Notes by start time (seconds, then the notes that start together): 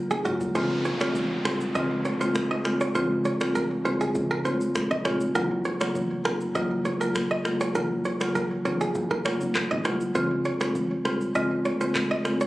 0.11 F1 G#4, shaker
0.25 C#3 F#3 A#3 F4 F#4, mid tom, high conga, shaker
0.41 C2, floor tom, shaker
0.55 C#2 C#3 G#3 C4 F4 C5, kick, downlifter, low conga, shaker
0.85 C#5, shaker
1.00 C#3 G#3 C4 F4 C#5, finger snap, cross-stick, high conga, shaker
1.15 kick, low conga, shaker
1.45 C2 C#3 G#3 C4 F4 C5, finger snap, cross-stick, shaker
1.61 shaker
1.75 C#2 C#3 G#3 C4 F4 D#5, kick, low conga, shaker
2.05 C#5, high conga, shaker
2.21 C#3 G#3 C4 F4 C5, high conga, shaker
2.35 finger snap, kick, cross-stick, shaker
2.51 D#5
2.65 C#3 G#3 C4 F4, finger snap, cross-stick, high conga, shaker
2.81 C#5, shaker
2.95 C#2 C#3 G#3 C4 F4 C5, kick, low conga, shaker
3.25 C#5, shaker
3.40 C#3 G#3 C4 F4 C#5, finger snap, cross-stick, high conga, shaker
3.55 A#4, kick, low conga, shaker
3.85 C2 C#3 G#3 C4 F4 C5, shaker
4.01 G#4, shaker
4.15 C#2, kick, low conga, shaker
4.31 A#4
4.45 C#3 G#3 C4 F4 C5, high conga, shaker
4.61 high conga, shaker
4.75 finger snap, kick, cross-stick, shaker
4.91 A#1 D#5
5.05 C#3 G#3 C4 F4 C#5, finger snap, cross-stick, high conga, shaker
5.21 F1, shaker
5.35 F#1 C#3 F#3 A#3 F4 A#4, kick, low conga, shaker
5.65 C#5, shaker
5.80 C#3 F#3 A#3 F4 C#5, finger snap, cross-stick, high conga, shaker
5.95 kick, low conga, shaker
6.25 F1 C#3 F#3 A#3 F4 A#4, finger snap, cross-stick, shaker
6.41 shaker
6.55 F#1 C#3 F#3 A#3 F4 D#5, kick, low conga, shaker
6.85 C#5, high conga, shaker
7.00 C#3 F#3 A#3 F4 A#4, high conga, shaker
7.15 finger snap, kick, cross-stick, shaker
7.31 D#5
7.45 C#3 F#3 A#3 F4, finger snap, cross-stick, high conga, shaker
7.61 C#5, shaker
7.75 F#1 C#3 F#3 A#3 F4 A#4, kick, low conga, shaker
8.05 C#5, shaker
8.20 C#3 F#3 A#3 F4 C#5, finger snap, cross-stick, high conga, shaker
8.35 A#4, kick, low conga, shaker
8.65 F1 C#3 F#3 A#3 F4 C#5, low conga, shaker
8.81 G#4, shaker
8.95 F#1, kick, low conga, shaker
9.11 A#4, kick
9.25 C#3 F#3 A#3 F4 C#5, finger snap, cross-stick, high conga, shaker
9.41 F1, high conga, shaker
9.55 finger snap, kick, cross-stick, clap, shaker
9.71 G#1 D#5
9.85 C2 C#3 F#3 A#3 F4 C#5, finger snap, cross-stick, high conga, shaker
10.01 shaker
10.15 C#2 C#3 G#3 C4 F4 C5, kick, low conga, shaker
10.45 C#5, shaker
10.60 C#3 G#3 C4 F4 C#5, finger snap, cross-stick, high conga, shaker
10.75 kick, low conga, shaker
11.05 C2 C#3 G#3 C4 F4 C5, finger snap, cross-stick, shaker
11.21 shaker
11.35 C#2 C#3 G#3 C4 F4 D#5, kick, low conga, shaker
11.65 C#5, high conga, shaker
11.81 C#3 G#3 C4 F4 C5, high conga, shaker
11.95 finger snap, kick, cross-stick, clap, shaker
12.11 D#5
12.25 C#3 G#3 C4 F4, finger snap, cross-stick, high conga, shaker
12.41 C#5, shaker